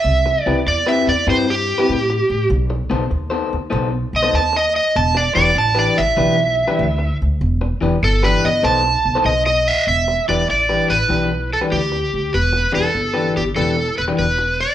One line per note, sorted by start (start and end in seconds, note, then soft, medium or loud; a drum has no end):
0.00 0.42 E5 medium
0.04 0.35 C2 medium
0.26 muted clean electric guitar stroke soft
0.42 0.64 D5 medium
0.46 0.61 C2 medium
0.46 0.59 C4 medium
0.46 0.59 E4 medium
0.46 0.59 G4 medium
0.46 0.59 B4 medium
0.66 0.97 E2 medium
0.66 0.87 D5 medium
0.66 muted clean electric guitar stroke soft
0.86 1.11 C4 medium
0.86 1.10 E4 medium
0.86 1.10 G4 medium
0.86 1.10 B4 medium
0.86 1.07 E5 medium
1.07 1.22 E2 medium
1.07 1.27 D5 medium
1.27 1.72 G2 medium
1.27 1.48 C4 medium
1.27 1.47 E4 medium
1.27 1.47 G4 medium
1.27 1.47 B4 medium
1.27 1.48 C5 medium
1.48 2.48 G4 loud
1.48 muted clean electric guitar stroke soft
1.78 1.95 C4 medium
1.78 1.95 E4 medium
1.78 1.95 G4 medium
1.78 1.94 B4 medium
1.89 2.19 A2 medium
2.10 muted clean electric guitar stroke soft
2.30 2.44 A2 medium
2.50 2.80 B1 loud
2.70 muted clean electric guitar stroke soft
2.90 3.05 B1 medium
2.90 3.03 B3 medium
2.90 3.04 D#4 medium
2.90 3.04 A4 medium
2.90 3.04 C5 medium
3.10 3.41 D#2 medium
3.10 muted clean electric guitar stroke soft
3.30 3.55 B3 medium
3.30 3.55 D#4 medium
3.30 3.55 A4 medium
3.30 3.55 C5 medium
3.53 3.67 D#2 medium
3.70 4.03 B1 loud
3.70 3.92 B3 medium
3.70 3.91 D#4 medium
3.70 3.91 A4 medium
3.70 3.90 C5 medium
3.91 muted clean electric guitar stroke medium
4.13 4.28 B1 medium
4.13 4.35 D#5 medium
4.23 4.40 B3 medium
4.23 4.40 D#4 medium
4.23 4.40 A4 medium
4.23 4.39 C5 medium
4.33 4.78 D#2 medium
4.33 4.54 A5 medium
4.53 4.75 D#5 loud
4.53 muted clean electric guitar stroke medium
4.76 4.95 D#5 medium
4.96 5.26 E1 loud
4.96 5.16 A5 loud
5.15 5.34 D5 medium
5.15 muted clean electric guitar stroke medium
5.35 5.51 E1 medium
5.35 5.49 E3 medium
5.35 5.49 D4 medium
5.35 5.49 G4 medium
5.35 5.50 B4 medium
5.35 5.55 D5 loud
5.54 5.86 A1 medium
5.54 muted clean electric guitar stroke soft
5.58 5.77 A5 medium
5.75 6.00 E3 medium
5.75 6.00 D4 medium
5.75 6.00 G4 medium
5.75 6.00 B4 medium
5.79 5.98 D5 medium
5.98 6.13 A1 medium
5.98 7.17 E5 loud
6.17 6.62 B1 loud
6.17 6.38 E3 medium
6.17 6.37 D4 medium
6.17 6.37 G4 medium
6.17 6.37 B4 medium
6.38 muted clean electric guitar stroke medium
6.68 6.85 E3 medium
6.68 6.85 D4 medium
6.68 6.85 G4 medium
6.68 6.85 B4 medium
6.79 7.09 D2 medium
6.98 muted clean electric guitar stroke soft
7.22 7.36 D2 medium
7.41 7.71 E1 loud
7.61 muted clean electric guitar stroke soft
7.81 7.97 E1 medium
7.81 7.95 E3 medium
7.81 7.95 D4 medium
7.81 7.95 G4 medium
7.81 7.95 B4 medium
8.03 8.33 G1 medium
8.03 8.23 A4 loud
8.03 muted clean electric guitar stroke soft
8.23 8.47 E3 medium
8.23 8.47 D4 medium
8.23 8.47 G4 medium
8.23 8.47 B4 medium
8.23 8.43 B4 medium
8.45 8.59 G1 medium
8.45 8.64 D#5 medium
8.63 8.94 B1 medium
8.63 8.84 B3 medium
8.63 8.84 D#4 medium
8.63 8.84 A4 loud
8.63 8.83 C5 loud
8.63 9.24 A5 loud
8.84 muted clean electric guitar stroke medium
9.05 9.20 B1 medium
9.15 9.32 B3 medium
9.15 9.32 D#4 medium
9.15 9.32 A4 medium
9.15 9.31 C5 loud
9.25 9.70 B1 medium
9.25 9.45 D#5 medium
9.46 9.86 D#5 loud
9.46 muted clean electric guitar stroke medium
9.68 9.87 E5 loud
9.87 10.17 E1 medium
9.87 10.28 E5 loud
10.08 muted clean electric guitar stroke soft
10.28 10.43 E1 medium
10.28 10.41 E3 medium
10.28 10.42 D4 medium
10.28 10.42 G4 medium
10.28 10.42 B4 medium
10.28 10.49 D5 medium
10.49 10.79 A1 medium
10.49 10.92 D5 medium
10.49 muted clean electric guitar stroke soft
10.69 10.94 E3 medium
10.69 10.93 D4 medium
10.69 10.93 G4 medium
10.69 10.93 B4 medium
10.90 11.04 A1 medium
10.90 11.53 B4 medium
11.09 11.55 B1 medium
11.09 11.30 E3 medium
11.09 11.31 D4 medium
11.09 11.31 G4 medium
11.09 11.30 B4 medium
11.31 muted clean electric guitar stroke soft
11.53 11.58 A4 medium
11.61 11.78 E3 medium
11.61 11.78 D4 medium
11.61 11.78 G4 medium
11.61 11.78 B4 medium
11.72 12.02 D2 medium
11.72 12.35 G4 medium
11.92 muted clean electric guitar stroke soft
12.14 12.28 D2 medium
12.34 12.64 E1 medium
12.34 12.74 B4 loud
12.53 muted clean electric guitar stroke soft
12.72 12.89 E1 medium
12.72 12.86 E3 medium
12.72 12.86 D4 medium
12.72 12.87 G4 medium
12.72 13.36 A4 medium
12.72 12.87 B4 medium
12.94 13.25 G1 medium
12.94 muted clean electric guitar stroke soft
13.14 13.39 E3 medium
13.14 13.39 D4 medium
13.14 13.39 G4 medium
13.14 13.38 B4 medium
13.36 13.51 G1 medium
13.36 13.42 G4 medium
13.55 13.87 E1 medium
13.55 13.77 E3 medium
13.55 13.77 D4 medium
13.55 13.77 G4 medium
13.55 13.98 A4 medium
13.55 13.76 B4 medium
13.78 muted clean electric guitar stroke soft
13.98 14.13 E1 medium
13.98 14.03 B4 medium
14.08 14.24 E3 medium
14.08 14.24 D4 medium
14.08 14.24 G4 medium
14.08 14.24 B4 medium
14.19 14.63 E1 medium
14.19 14.61 B4 medium
14.38 muted clean electric guitar stroke medium
14.61 14.75 D5 medium